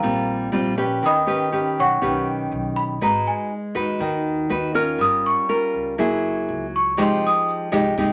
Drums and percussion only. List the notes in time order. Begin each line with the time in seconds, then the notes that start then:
6.98 kick, cross-stick, closed hi-hat
7.23 closed hi-hat
7.48 closed hi-hat
7.72 kick, cross-stick, closed hi-hat
7.98 kick, closed hi-hat